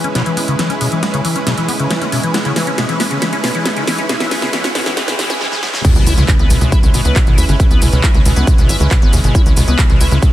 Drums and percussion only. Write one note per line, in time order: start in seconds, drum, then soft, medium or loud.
0.04 closed hi-hat medium
0.15 snare medium
0.15 closed hi-hat medium
0.26 closed hi-hat medium
0.37 open hi-hat loud
0.48 closed hi-hat soft
0.59 snare medium
0.59 closed hi-hat medium
0.70 closed hi-hat medium
0.81 open hi-hat loud
0.92 closed hi-hat soft
1.03 snare medium
1.03 closed hi-hat medium
1.14 closed hi-hat medium
1.25 open hi-hat loud
1.36 closed hi-hat medium
1.47 snare medium
1.47 closed hi-hat medium
1.58 closed hi-hat medium
1.69 open hi-hat loud
1.80 closed hi-hat medium
1.91 snare medium
1.91 closed hi-hat medium
2.02 closed hi-hat medium
2.12 open hi-hat loud
2.23 closed hi-hat medium
2.34 snare medium
2.34 closed hi-hat medium
2.45 closed hi-hat medium
2.56 snare medium
2.56 open hi-hat loud
2.67 closed hi-hat medium
2.78 snare medium
2.78 closed hi-hat medium
2.89 closed hi-hat medium
3.00 snare medium
3.00 open hi-hat loud
3.11 closed hi-hat medium
3.22 snare medium
3.22 closed hi-hat medium
3.33 closed hi-hat medium
3.44 snare medium
3.44 open hi-hat loud
3.55 closed hi-hat medium
3.65 snare medium
3.65 closed hi-hat medium
3.77 closed hi-hat soft
3.87 snare medium
3.87 open hi-hat loud
3.98 closed hi-hat soft
4.09 snare medium
4.09 closed hi-hat medium
4.20 snare medium
4.20 closed hi-hat medium
4.31 snare loud
4.31 open hi-hat loud
4.42 snare medium
4.42 closed hi-hat soft
4.53 snare loud
4.53 closed hi-hat medium
4.64 snare medium
4.64 closed hi-hat soft
4.75 snare medium
4.75 open hi-hat loud
4.86 snare medium
4.86 closed hi-hat medium
4.97 snare loud
4.97 closed hi-hat medium
5.08 snare medium
5.08 closed hi-hat medium
5.19 snare loud
5.19 open hi-hat loud
5.30 snare medium
5.30 closed hi-hat medium
5.41 snare medium
5.52 snare medium
5.63 snare medium
5.74 snare medium
5.85 kick loud
5.85 closed hi-hat medium
5.85 crash loud
5.85 shaker soft
5.96 closed hi-hat soft
5.96 shaker soft
6.07 open hi-hat loud
6.07 shaker medium
6.18 closed hi-hat soft
6.18 shaker soft
6.28 kick loud
6.28 clap loud
6.28 closed hi-hat medium
6.28 shaker soft
6.39 closed hi-hat soft
6.50 open hi-hat loud
6.50 shaker medium
6.61 closed hi-hat soft
6.61 shaker soft
6.72 kick loud
6.72 closed hi-hat medium
6.72 shaker soft
6.83 closed hi-hat soft
6.83 shaker soft
6.94 open hi-hat loud
6.94 shaker medium
7.05 closed hi-hat soft
7.05 shaker soft
7.16 kick loud
7.16 clap loud
7.16 closed hi-hat medium
7.16 shaker soft
7.27 closed hi-hat soft
7.38 open hi-hat loud
7.38 shaker medium
7.49 closed hi-hat soft
7.49 shaker soft
7.60 kick loud
7.60 closed hi-hat medium
7.60 shaker soft
7.71 closed hi-hat soft
7.71 shaker soft
7.82 open hi-hat loud
7.82 shaker medium
7.93 closed hi-hat soft
7.93 shaker soft
8.04 kick loud
8.04 clap loud
8.04 closed hi-hat medium
8.04 shaker soft
8.14 closed hi-hat soft
8.25 open hi-hat loud
8.25 shaker medium
8.36 closed hi-hat soft
8.36 shaker soft
8.47 kick loud
8.47 closed hi-hat medium
8.47 shaker soft
8.58 closed hi-hat soft
8.58 shaker soft
8.69 open hi-hat loud
8.69 shaker medium
8.80 closed hi-hat soft
8.80 shaker soft
8.91 kick loud
8.91 clap loud
8.91 closed hi-hat medium
8.91 shaker soft
9.02 closed hi-hat soft
9.13 open hi-hat loud
9.13 shaker medium
9.24 closed hi-hat soft
9.24 shaker soft
9.35 kick loud
9.35 closed hi-hat medium
9.35 shaker soft
9.46 closed hi-hat soft
9.46 shaker soft
9.57 open hi-hat loud
9.57 shaker medium
9.68 closed hi-hat soft
9.68 shaker soft
9.79 kick loud
9.79 clap loud
9.79 closed hi-hat medium
9.79 shaker soft
9.90 closed hi-hat soft
10.01 open hi-hat loud
10.01 shaker medium
10.12 closed hi-hat soft
10.12 shaker soft
10.22 kick loud
10.22 closed hi-hat medium
10.22 shaker soft